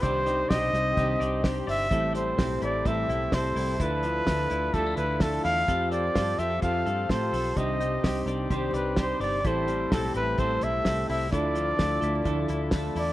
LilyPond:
<<
  \new Staff \with { instrumentName = "Trumpet" } { \time 4/4 \key c \major \tempo 4 = 128 c''4 ees''2 r8 e''8~ | e''8 c''4 d''8 e''4 c''4 | b'2 a'8 b'8 a'8 f''8~ | f''8 d''4 e''8 f''4 c''4 |
ees''4. r8 c''8 b'8 c''8 d''8 | c''4 a'8 b'8 c''8 e''4 e''8 | d''2. r8 d''8 | }
  \new Staff \with { instrumentName = "Transistor combo organ" } { \time 4/4 \key c \major <c' ees' g' c''>1 | <c' e' g' a'>1 | <d' e' f' a'>1 | <c' f' g' a'>1 |
<c' ees' g' c''>1 | <c' e' g' a'>1 | <d' e' f' a'>1 | }
  \new Staff \with { instrumentName = "Clean electric guitar" } { \time 4/4 \key c \major <c d''>8 ees'8 g'4 g'8 d''8 g'8 d''8 | <a, e'>8 g8 c'8 e'8 c'8 e'8 c'8 e'8 | <d e'>8 f8 a8 e'8 g16 a16 e'8 a8 e'8 | <f a'>8 c'8 f'8 g'16 a'16 f'8 a'8 f'8 a'8 |
c8 ees'8 g'8 d''8 g'8 d''8 g'8 d''8 | <a, e'>8 g8 c'8 e'8 c'8 e'8 c'8 e'8 | <d e'>8 f8 a8 e'8 a8 e'8 a8 e'8 | }
  \new Staff \with { instrumentName = "Clean electric guitar" } { \time 4/4 \key c \major <c ees g c' d' g'>8 <g c' d' g'>8 <g c' d' g'>8 <g c' d' g'>8 <c ees g c' d' g'>8 <g c' d' g'>8 <g c' d' g'>8 <g c' d' g'>8 | <a, e g c' e' a'>8 <g c' e' a'>8 <g c' e' a'>8 <g c' e' a'>8 <a, e g c' e' a'>8 <g c' e' a'>8 <g c' e' a'>8 <g c' e' a'>8 | <d f d' e' a'>8 <e' a'>8 <f d' e' a'>8 <d' e' a'>8 <d f d' e' a'>8 <d' e' a'>8 <f d' e' a'>8 <d' e' a'>8 | <f c' g' a'>8 <c' g' a'>8 <f c' g' a'>8 <c' g' a'>8 <f c' g' a'>8 <c' g' a'>8 <f c' g' a'>8 <c' g' a'>8 |
<c ees g c' d' g'>8 <g c' d' g'>8 <g c' d' g'>8 <g c' d' g'>8 <c ees g c' d' g'>8 <g c' d' g'>8 <g c' d' g'>8 <g c' d' g'>8 | <a, e g c' e' a'>8 <g c' e' a'>8 <g c' e' a'>8 <g c' e' a'>8 <a, e g c' e' a'>8 <g c' e' a'>8 <g c' e' a'>8 <g c' e' a'>8 | <d f d' e' a'>8 <e' a'>8 <f d' e' a'>8 <d' e' a'>8 <d f d' e' a'>8 <d' e' a'>8 <f d' e' a'>8 <d' e' a'>8 | }
  \new Staff \with { instrumentName = "Fingered electric bass" } { \clef bass \time 4/4 \key c \major c,4 b,,8 c,8 c,8 c,4 g,,8 | a,,4 b,,8 a,,8 a,,8 b,,8 c,8 c,8 | d,4 d,8 d,8 d,8 d,4 e,8 | f,4 g,8 f,8 f,8 g,8 a,8 b,,8 |
c,4 c,8 c,8 c,8 c,4 g,,8 | a,,4 b,,8 a,,8 a,,8 b,,8 c,8 c,8 | d,4 d,8 d,8 d,8 d,4 e,8 | }
  \new DrumStaff \with { instrumentName = "Drums" } \drummode { \time 4/4 <hho hhp bd>8 <hho hhp>8 <hho hhp bd sn>8 <hho hhp>8 <hho hhp bd>8 <hho hhp>8 <hho hhp bd sn>8 <hho hhp>8 | <hho hhp bd>8 <hho hhp>8 <hho hhp bd sn>8 <hho hhp>8 <hho hhp bd>8 <hho hhp>8 <hho hhp bd sn>8 <hho hhp>8 | <hho hhp bd>8 <hho hhp>8 <hho hhp bd sn>8 <hho hhp>8 <hho hhp bd>8 <hho hhp>8 <hho hhp bd sn>8 <hho hhp>8 | <hho hhp bd>8 <hho hhp>8 <hho hhp bd sn>8 <hho hhp>8 <hho hhp bd>8 <hho hhp>8 <hho hhp bd sn>8 <hho hhp>8 |
<hho hhp bd>8 <hho hhp>8 <hho hhp bd sn>8 <hho hhp>8 <hho hhp bd>8 <hho hhp>8 <hho hhp bd sn>8 <hho hhp>8 | <hho hhp bd>8 <hho hhp>8 <hho hhp bd sn>8 <hho hhp>8 <hho hhp bd>8 <hho hhp>8 <hho hhp bd sn>8 <hho hhp>8 | <hho hhp bd>8 <hho hhp>8 <hho hhp bd sn>8 <hho hhp>8 <hho hhp bd>8 <hho hhp>8 <hho hhp bd sn>8 <hho hhp>8 | }
>>